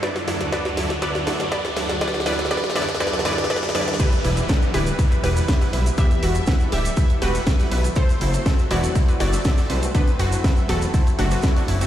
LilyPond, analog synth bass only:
\new Staff \with { instrumentName = "Analog synth bass" } { \clef bass \time 4/4 \key e \minor \tempo 4 = 121 r1 | r1 | r8 e,,8 r8 d,,8 r8 e,,8 r8 b,,8 | r8 e,,8 r8 d,,8 r8 e,,8 r8 b,,8 |
r8 fis,,8 r8 e,,8 r8 fis,,8 r8 c,8 | r8 fis,,8 r8 e,,8 r8 fis,,8 r8 fis,,8 | }